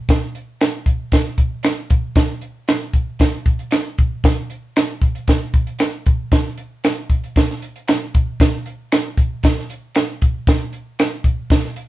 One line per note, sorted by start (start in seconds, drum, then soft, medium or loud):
0.09 kick loud
0.09 snare loud
0.09 closed hi-hat medium
0.35 closed hi-hat medium
0.61 finger snap medium
0.61 snare loud
0.61 closed hi-hat medium
0.86 kick medium
0.86 closed hi-hat medium
1.12 kick medium
1.12 snare loud
1.12 closed hi-hat medium
1.38 kick medium
1.38 closed hi-hat medium
1.63 finger snap medium
1.63 snare medium
1.63 closed hi-hat medium
1.90 kick medium
1.90 closed hi-hat medium
2.16 kick loud
2.16 snare loud
2.16 closed hi-hat medium
2.41 closed hi-hat medium
2.68 finger snap medium
2.68 snare loud
2.68 closed hi-hat medium
2.94 kick medium
2.94 closed hi-hat medium
3.19 kick medium
3.19 snare loud
3.19 closed hi-hat medium
3.46 kick medium
3.46 closed hi-hat medium
3.59 closed hi-hat medium
3.71 finger snap medium
3.71 snare medium
3.71 closed hi-hat medium
3.98 kick medium
3.98 closed hi-hat medium
4.24 kick loud
4.24 snare loud
4.24 closed hi-hat medium
4.50 closed hi-hat medium
4.76 finger snap medium
4.76 snare loud
4.76 closed hi-hat medium
5.02 kick medium
5.02 closed hi-hat medium
5.15 closed hi-hat soft
5.28 kick medium
5.28 snare loud
5.28 closed hi-hat medium
5.54 kick medium
5.54 closed hi-hat medium
5.67 closed hi-hat soft
5.79 finger snap medium
5.79 snare loud
5.79 closed hi-hat medium
6.06 kick medium
6.06 closed hi-hat medium
6.32 kick loud
6.32 snare loud
6.32 closed hi-hat medium
6.58 closed hi-hat medium
6.84 finger snap medium
6.84 snare loud
6.84 closed hi-hat medium
7.10 kick medium
7.10 closed hi-hat medium
7.24 closed hi-hat soft
7.36 kick medium
7.36 snare loud
7.36 closed hi-hat medium
7.51 snare soft
7.62 closed hi-hat medium
7.76 closed hi-hat soft
7.88 finger snap medium
7.88 snare loud
7.88 closed hi-hat medium
8.14 kick medium
8.14 closed hi-hat medium
8.40 kick loud
8.40 snare loud
8.40 closed hi-hat medium
8.66 closed hi-hat medium
8.92 finger snap medium
8.92 snare loud
8.92 closed hi-hat medium
9.17 kick medium
9.17 closed hi-hat medium
9.43 kick medium
9.43 snare loud
9.43 closed hi-hat medium
9.58 snare soft
9.70 closed hi-hat medium
9.95 finger snap medium
9.95 snare loud
9.95 closed hi-hat medium
10.22 kick medium
10.22 closed hi-hat medium
10.47 kick loud
10.47 snare loud
10.47 closed hi-hat medium
10.73 closed hi-hat medium
10.99 finger snap medium
10.99 snare loud
10.99 closed hi-hat medium
11.24 kick medium
11.24 closed hi-hat medium
11.50 kick medium
11.50 snare loud
11.50 closed hi-hat medium
11.65 snare soft
11.76 closed hi-hat medium